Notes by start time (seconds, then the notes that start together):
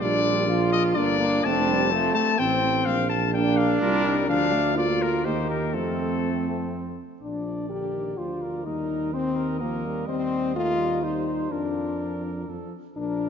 0.01 A#1 G3 D4 F4 D5
0.48 F3 F4
0.72 D#5
0.95 G1 A#3 D4 D5
1.20 A#3
1.44 F1 A3 C4 D4 A5
1.68 G3
1.90 F3 A3 C4
2.15 A3 A5
2.38 A1 C4 G5
2.63 C4
2.85 A#1 F5
3.10 A5
3.33 A#3 D4 G5
3.57 F5
3.82 C2 G3 F4 A#4
4.05 D#4
4.28 D2 F3 D4 F5
4.53 A3
4.77 A#3 F4 D5
5.02 A#4
5.25 D#2 A#3 D#4 G4 C5
5.50 A#4
5.74 F2 A3 C4 A4
7.21 A#1 F3 D4 D5
7.70 D3 G4 A#4
7.95 D#3
8.17 D2 F3 F4 C5 D5
8.42 A#4
8.65 D#2 G3 D#4 A#4 D#5
9.13 D#3 C4 C5 D#5
9.36 A#4
9.59 F3 A#3 A#4
9.85 G3
10.06 D#2 C4 C5 D#5
10.56 A3 F4 A#4
10.79 G3
11.02 G3 D#4 C5
11.26 C5
11.51 F2 F3 D4 A#4 D5
12.48 F2 F3 A4
12.96 A#1 F3 D4 A#4